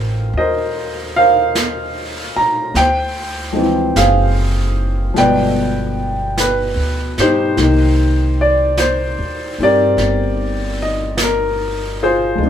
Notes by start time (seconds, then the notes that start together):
Already playing: A1 F3 A#3 C4 D#4 A#4 C5 F5
0.33 D#2, brush sweep
0.37 A#4 C5 D#5
1.16 A#4 C5 F5
1.55 brush sweep, snare, hi-hat pedal
2.36 A#5, muted upright bass stroke
2.74 D2 G5, brush sweep, snare
2.79 C5
3.52 F3 G#3 C4
3.58 E3
3.96 F#1 G#4 C5 F5, brush sweep, snare, hi-hat pedal
5.14 G1 B2 F3 G#3, brush sweep, snare
5.18 B4 D5 G5
6.38 B4, brush sweep, snare, hi-hat pedal
6.76 D2
7.18 G2 D#4 G4 C5, snare
7.57 C2 D#3 A#3, brush sweep, snare
7.62 D#4
8.41 D5
8.77 C5, brush sweep, snare, hi-hat pedal
9.19 D#2
9.58 G2 C4
9.63 G4 A#4 D5
9.97 G1, brush sweep, snare
10.82 D#5
11.17 brush sweep, snare, hi-hat pedal
11.22 A#4
12.03 F4 G#4 C5
12.35 D2 F3 G#3, brush sweep
12.42 C4 D4